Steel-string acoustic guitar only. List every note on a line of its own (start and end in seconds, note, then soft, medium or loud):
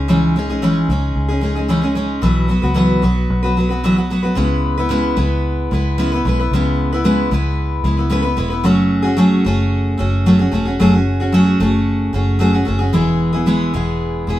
0.08 0.35 C#3 medium
0.08 0.35 E3 medium
0.08 0.35 G#3 medium
0.08 0.36 C#4 medium
0.08 0.36 D#4 medium
0.08 0.36 G#4 medium
0.36 0.49 G#3 medium
0.36 0.49 C#4 medium
0.36 0.49 D#4 medium
0.36 0.48 G#4 medium
0.49 0.62 G#3 medium
0.49 0.62 C#4 medium
0.49 0.63 D#4 medium
0.49 0.63 G#4 medium
0.62 0.89 C#3 medium
0.62 0.89 E3 medium
0.62 0.89 G#3 medium
0.62 0.90 C#4 medium
0.62 0.90 D#4 medium
0.62 0.90 G#4 medium
0.90 1.30 G#3 medium
0.90 1.30 C#4 medium
0.90 1.29 D#4 medium
0.90 1.27 G#4 medium
1.28 1.40 G#3 soft
1.28 1.41 C#4 soft
1.28 1.42 D#4 medium
1.28 1.42 G#4 medium
1.41 1.55 G#3 medium
1.41 1.56 C#4 medium
1.41 1.55 D#4 medium
1.41 1.54 G#4 medium
1.55 1.68 G#3 soft
1.55 1.68 C#4 soft
1.55 1.69 D#4 medium
1.55 1.69 G#4 medium
1.68 1.82 C#3 medium
1.68 1.83 E3 medium
1.68 1.83 G#3 medium
1.68 1.82 C#4 medium
1.68 1.82 D#4 medium
1.68 1.80 G#4 medium
1.81 1.94 G#3 medium
1.81 1.95 C#4 medium
1.81 1.96 D#4 medium
1.81 1.96 G#4 medium
1.95 2.23 G#3 medium
1.95 2.23 C#4 medium
1.95 2.23 D#4 medium
1.95 2.23 G#4 medium
2.22 2.49 B2 medium
2.22 2.50 E3 medium
2.22 2.47 F#3 medium
2.22 2.48 B3 medium
2.22 2.49 F#4 medium
2.22 2.50 B4 medium
2.48 2.62 F#3 medium
2.48 2.63 B3 medium
2.48 2.62 F#4 medium
2.48 2.61 B4 medium
2.62 2.74 F#3 soft
2.62 2.75 B3 medium
2.62 2.75 F#4 medium
2.62 2.76 B4 medium
2.74 3.02 B2 medium
2.74 3.03 E3 medium
2.74 3.01 F#3 medium
2.74 3.02 B3 medium
2.74 3.03 F#4 medium
2.74 3.04 B4 medium
3.02 3.43 F#3 medium
3.02 3.44 B3 medium
3.02 3.43 F#4 medium
3.02 3.41 B4 medium
3.43 3.56 F#3 medium
3.43 3.57 B3 medium
3.43 3.57 F#4 medium
3.43 3.57 B4 medium
3.57 3.70 F#3 medium
3.57 3.71 B3 medium
3.57 3.69 F#4 medium
3.57 3.68 B4 medium
3.69 3.83 F#3 soft
3.69 3.84 B3 medium
3.69 3.84 F#4 medium
3.69 3.83 B4 soft
3.83 3.97 B2 medium
3.83 3.97 E3 medium
3.83 3.98 F#3 medium
3.83 3.97 B3 medium
3.83 3.96 F#4 medium
3.83 3.95 B4 medium
3.96 4.09 F#3 medium
3.96 4.10 B3 medium
3.96 4.11 F#4 medium
3.96 4.10 B4 medium
4.10 4.24 F#3 medium
4.10 4.24 B3 medium
4.10 4.22 F#4 medium
4.10 4.21 B4 medium
4.23 4.36 F#3 soft
4.23 4.36 B3 soft
4.23 4.37 F#4 medium
4.23 4.37 B4 medium
4.35 4.77 C#3 medium
4.35 4.77 G#3 medium
4.35 4.78 B3 medium
4.35 4.78 E4 medium
4.35 4.76 B4 medium
4.78 4.90 B3 medium
4.78 4.90 E4 medium
4.78 4.90 B4 medium
4.89 5.17 C#3 medium
4.89 5.15 G#3 medium
4.89 5.16 B3 medium
4.89 5.17 E4 loud
4.89 5.17 B4 medium
5.16 5.71 G#3 medium
5.16 5.71 B3 medium
5.16 5.71 E4 medium
5.16 5.72 B4 medium
5.71 5.97 G#3 medium
5.71 5.98 B3 medium
5.71 5.98 E4 medium
5.71 5.98 B4 medium
5.98 6.11 C#3 medium
5.98 6.12 G#3 medium
5.98 6.12 B3 medium
5.98 6.12 E4 medium
5.98 6.10 B4 medium
6.12 6.26 B3 medium
6.12 6.26 E4 medium
6.12 6.25 B4 medium
6.25 6.38 G#3 medium
6.25 6.39 B3 medium
6.25 6.39 E4 medium
6.25 6.38 B4 medium
6.39 6.54 B3 soft
6.39 6.53 E4 soft
6.39 6.52 B4 medium
6.53 6.93 C#3 medium
6.53 6.93 G#3 medium
6.53 6.93 B3 medium
6.53 6.93 E4 medium
6.53 6.91 B4 medium
6.93 7.04 B3 medium
6.93 7.04 E4 medium
6.93 7.05 B4 medium
7.04 7.32 C#3 medium
7.04 7.30 G#3 loud
7.04 7.31 B3 medium
7.04 7.32 E4 medium
7.04 7.32 B4 medium
7.31 7.84 G#3 medium
7.31 7.84 B3 medium
7.31 7.85 E4 medium
7.31 7.86 B4 medium
7.84 7.98 G#3 medium
7.84 7.99 B3 medium
7.84 7.97 E4 medium
7.84 7.96 B4 medium
7.97 8.10 B3 soft
7.97 8.10 E4 soft
7.97 8.11 B4 soft
8.10 8.24 C#3 medium
8.10 8.25 G#3 medium
8.10 8.25 B3 medium
8.10 8.23 E4 medium
8.10 8.21 B4 loud
8.22 8.36 B3 medium
8.22 8.37 E4 medium
8.22 8.37 B4 medium
8.37 8.51 G#3 medium
8.37 8.52 B3 medium
8.37 8.50 E4 medium
8.37 8.49 B4 medium
8.50 8.65 B3 soft
8.50 8.65 E4 medium
8.50 8.65 B4 soft
8.64 9.05 F#3 medium
8.64 9.05 A3 medium
8.64 9.05 C#4 loud
8.64 9.03 F#4 medium
8.64 9.01 G#4 medium
9.02 9.17 C#4 medium
9.02 9.17 F#4 medium
9.02 9.18 G#4 medium
9.17 9.45 F#3 loud
9.17 9.43 A3 loud
9.17 9.45 C#4 medium
9.17 9.45 F#4 medium
9.17 9.46 G#4 loud
9.45 9.96 A3 medium
9.45 9.98 C#4 medium
9.45 9.99 F#4 medium
9.45 10.00 G#4 medium
9.98 10.26 A3 medium
9.98 10.26 C#4 medium
9.98 10.27 F#4 medium
9.98 10.27 G#4 medium
10.26 10.40 F#3 medium
10.26 10.40 A3 medium
10.26 10.40 C#4 medium
10.26 10.40 F#4 medium
10.26 10.38 G#4 loud
10.39 10.52 C#4 soft
10.39 10.53 F#4 medium
10.39 10.53 G#4 medium
10.52 10.66 A3 medium
10.52 10.66 C#4 medium
10.52 10.66 F#4 medium
10.52 10.64 G#4 medium
10.65 10.80 C#4 soft
10.65 10.80 F#4 medium
10.65 10.79 G#4 medium
10.79 10.93 F#3 medium
10.79 10.93 A3 medium
10.79 10.94 C#4 medium
10.79 10.94 F#4 medium
10.79 10.92 G#4 loud
10.93 11.21 C#4 soft
10.93 11.20 F#4 medium
10.93 11.19 G#4 medium
11.20 11.33 C#4 soft
11.20 11.33 F#4 medium
11.20 11.33 G#4 medium
11.32 11.60 F#3 medium
11.32 11.59 A3 medium
11.32 11.60 C#4 medium
11.32 11.61 F#4 loud
11.32 11.61 G#4 medium
11.60 12.12 A3 medium
11.60 12.13 C#4 medium
11.60 12.13 F#4 medium
11.60 12.15 G#4 medium
12.13 12.39 A3 medium
12.13 12.39 C#4 medium
12.13 12.39 F#4 medium
12.13 12.40 G#4 medium
12.39 12.53 F#3 medium
12.39 12.54 A3 medium
12.39 12.54 C#4 medium
12.39 12.53 F#4 medium
12.39 12.52 G#4 medium
12.53 12.65 C#4 medium
12.53 12.66 F#4 medium
12.53 12.67 G#4 medium
12.65 12.80 A3 medium
12.65 12.81 C#4 medium
12.65 12.79 F#4 medium
12.65 12.78 G#4 medium
12.79 12.93 C#4 soft
12.79 12.94 F#4 soft
12.79 12.93 G#4 medium
12.93 13.34 E3 medium
12.93 13.34 G#3 medium
12.93 13.34 B3 medium
12.93 13.33 E4 medium
12.93 13.31 G#4 medium
13.33 13.46 B3 medium
13.33 13.46 E4 medium
13.33 13.47 G#4 medium
13.46 13.74 E3 medium
13.46 13.72 G#3 medium
13.46 13.73 B3 medium
13.46 13.75 E4 medium
13.46 13.75 G#4 medium
13.73 14.26 G#3 medium
13.73 14.28 B3 medium
13.73 14.29 E4 medium
13.73 14.29 G#4 medium
14.27 14.39 G#3 medium
14.27 14.39 B3 medium
14.27 14.39 E4 medium
14.27 14.39 G#4 medium